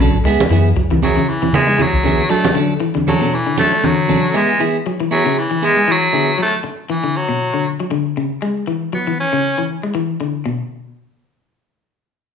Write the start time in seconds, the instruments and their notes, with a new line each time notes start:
0.00 fingered electric bass B1, clean electric guitar C#3 F#3 C#4 D4 A4
0.13 fingered electric bass A1
0.24 fingered electric bass C#2, clean electric guitar G#3 B3 E4 G#4
0.40 high conga
0.50 fingered electric bass F#2, clean electric guitar E3 B3 E4 G#4
0.76 fingered electric bass C#2, clean electric guitar F#3
0.90 fingered electric bass C#2, clean electric guitar E3, high conga
1.02 baritone saxophone F#3, clean electric guitar E4 G#4, muted clean electric guitar stroke, high conga
1.17 clean electric guitar C#3
1.29 baritone saxophone E3
1.42 clean electric guitar E3, high conga
1.53 fingered electric bass C#3, baritone saxophone G#3, clean electric guitar B3 E4 G#4, high conga
1.67 clean electric guitar G#3 E4 G#4
1.78 clean electric guitar E3, baritone saxophone F#3, high conga
1.93 fingered electric bass C#2
2.04 clean electric guitar D3 B3 E4 G#4, high conga
2.30 clean electric guitar F#3 D4 A4, baritone saxophone A3, muted clean electric guitar stroke
2.45 high conga
2.55 clean electric guitar D3 F#3 C#4 D4 A4
2.80 clean electric guitar E3
2.95 clean electric guitar D3, high conga
3.07 clean electric guitar F#3 C#4 D4 A4, baritone saxophone F#3, high conga
3.21 clean electric guitar B2 C#4 D4 A4
3.34 baritone saxophone E3
3.46 clean electric guitar D3
3.57 clean electric guitar F#3 C#4 D4 A4, baritone saxophone A3, high conga
3.72 clean electric guitar F#3
3.84 clean electric guitar D3, baritone saxophone F#3, high conga
4.08 clean electric guitar C#3 F#3 C#4 D4 A4, high conga
4.34 clean electric guitar G#3 B3 E4 G#4, baritone saxophone G#3
4.59 clean electric guitar E3 B3 E4 G#4
4.86 clean electric guitar F#3
5.00 clean electric guitar E3
5.11 baritone saxophone F#3, clean electric guitar B3 E4 G#4
5.24 clean electric guitar C#3 E4 G#4
5.38 baritone saxophone E3
5.51 clean electric guitar E3
5.62 baritone saxophone G#3, clean electric guitar B3 E4 G#4
5.77 clean electric guitar G#3
5.88 clean electric guitar E3, baritone saxophone F#3
6.13 clean electric guitar D3 B3 E4 G#4
6.38 clean electric guitar F#3, baritone saxophone A3
6.64 muted clean electric guitar stroke
6.90 clean electric guitar E3, baritone saxophone E3
7.04 clean electric guitar D3
7.16 baritone saxophone F#3
7.29 clean electric guitar B2
7.54 clean electric guitar D3
7.80 clean electric guitar F#3
7.91 clean electric guitar D3
8.17 clean electric guitar C#3
8.42 clean electric guitar G#3
8.67 clean electric guitar E3
8.93 clean electric guitar F#3, baritone saxophone B3
9.07 clean electric guitar E3
9.20 baritone saxophone C#4
9.33 clean electric guitar C#3
9.58 clean electric guitar E3
9.83 clean electric guitar G#3
9.95 clean electric guitar E3
10.21 clean electric guitar D3
10.46 clean electric guitar B2